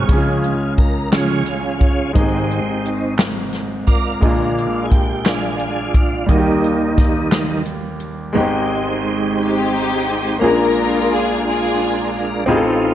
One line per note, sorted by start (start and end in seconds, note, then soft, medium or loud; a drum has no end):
0.00 0.11 G#1 medium
0.00 0.11 G#2 medium
0.00 0.12 C4 medium
0.00 0.11 D#4 medium
0.00 0.10 G#4 medium
0.00 0.74 G#4 medium
0.00 0.39 C#5 loud
0.00 0.74 F5 medium
0.07 2.12 C#2 medium
0.07 0.55 C#3 soft
0.07 2.12 C#3 medium
0.07 0.55 F3 soft
0.07 2.10 G#3 medium
0.07 0.55 G#3 soft
0.07 2.11 C#4 medium
0.07 0.17 D#4 soft
0.07 kick medium
0.07 closed hi-hat medium
0.12 2.13 G#4 medium
0.17 2.15 F4 soft
0.44 closed hi-hat soft
0.78 1.10 A#4 medium
0.78 kick medium
0.78 closed hi-hat soft
1.12 1.43 C#3 soft
1.12 1.43 F3 soft
1.12 1.43 G#3 soft
1.12 2.12 C#4 medium
1.12 2.12 F4 medium
1.12 2.12 G#4 medium
1.12 snare medium
1.12 clap medium
1.12 closed hi-hat medium
1.46 closed hi-hat soft
1.81 kick medium
1.81 closed hi-hat soft
2.13 4.18 G#1 medium
2.13 2.61 G#2 soft
2.13 4.18 G#2 medium
2.13 2.61 D#3 soft
2.13 4.16 G#3 medium
2.13 2.22 A#3 soft
2.13 3.15 C4 medium
2.13 3.14 D#4 soft
2.13 4.18 D#4 medium
2.13 2.89 G4 medium
2.13 kick medium
2.13 closed hi-hat medium
2.18 4.20 C4 medium
2.18 4.19 G#4 medium
2.51 closed hi-hat soft
2.85 closed hi-hat soft
3.19 snare medium
3.19 clap medium
3.19 closed hi-hat medium
3.53 snare soft
3.53 closed hi-hat soft
3.87 4.86 F4 medium
3.87 4.52 A#4 medium
3.87 4.86 D5 medium
3.87 kick medium
3.87 closed hi-hat soft
4.20 6.25 A#1 medium
4.20 4.67 A#2 soft
4.20 6.25 A#2 medium
4.20 4.67 D3 soft
4.20 6.24 G#3 medium
4.20 4.68 G#3 soft
4.20 6.24 A#3 medium
4.20 6.25 D4 medium
4.20 kick medium
4.20 closed hi-hat medium
4.25 6.26 F4 medium
4.58 closed hi-hat soft
4.84 4.91 G#4 medium
4.90 5.26 G4 medium
4.90 kick medium
4.90 closed hi-hat soft
5.25 6.24 D4 medium
5.25 5.93 F4 medium
5.25 5.96 G#4 medium
5.25 snare medium
5.25 clap medium
5.25 closed hi-hat medium
5.60 closed hi-hat soft
5.94 6.26 F4 medium
5.94 kick medium
5.94 closed hi-hat soft
6.26 8.31 D#2 medium
6.26 7.30 D#3 soft
6.26 8.31 D#3 medium
6.26 8.30 G3 medium
6.26 7.31 G3 medium
6.26 8.31 A#3 soft
6.26 7.31 A#3 medium
6.26 7.62 D#4 medium
6.26 8.31 D#4 soft
6.26 kick medium
6.26 closed hi-hat medium
6.31 6.36 F#4 soft
6.38 8.36 G4 medium
6.64 closed hi-hat soft
6.98 kick medium
6.98 snare soft
6.98 closed hi-hat soft
7.31 7.62 D#3 soft
7.31 7.63 G3 soft
7.31 7.63 A#3 soft
7.31 snare medium
7.31 clap medium
7.31 closed hi-hat medium
7.65 closed hi-hat soft
8.00 closed hi-hat soft
8.33 10.37 G#1 medium
8.33 10.37 G#2 medium
8.33 10.36 G#3 medium
8.33 10.37 G#3 medium
8.33 8.41 B3 medium
8.33 10.37 D#4 medium
8.33 10.38 D#4 medium
8.33 10.37 G4 medium
8.33 8.41 B4 medium
8.38 10.40 C4 medium
8.38 10.39 G4 medium
8.38 10.40 C5 medium
9.40 10.38 C4 medium
9.40 10.39 D#4 medium
9.40 10.38 G4 medium
10.39 12.44 A#1 medium
10.39 12.44 A#2 medium
10.39 12.44 G#3 medium
10.39 12.43 A#3 medium
10.39 10.48 C4 soft
10.39 10.48 C#4 soft
10.39 11.41 D4 medium
10.39 12.44 F4 soft
10.39 12.45 F4 medium
10.39 11.42 F4 medium
10.39 12.44 A#4 medium
10.39 11.11 A#4 loud
10.44 12.47 D4 soft
10.44 12.47 D4 medium
10.44 12.46 G#4 medium
11.12 11.46 G#4 medium
11.47 12.46 D4 medium
11.47 12.45 F4 medium
11.47 12.20 G#4 medium
12.46 12.94 A1 medium
12.46 12.94 A2 medium
12.46 12.55 G#3 medium
12.46 12.94 C4 medium
12.46 12.94 D#4 medium
12.46 12.94 F4 medium
12.46 12.94 C5 medium
12.51 12.94 A3 medium
12.51 12.56 G#4 medium
12.57 12.94 A4 medium